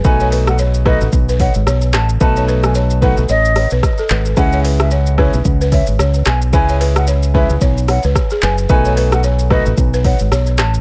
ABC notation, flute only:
X:1
M:4/4
L:1/16
Q:"Swing 16ths" 1/4=111
K:Bmix
V:1 name="Flute"
g2 z f z2 d z3 f z3 a z | a2 z g z2 f z d3 z4 z | f2 z e z2 c z3 e z3 g z | g2 z f z2 e z3 f z3 g z |
g2 z f z2 d z3 f z3 a z |]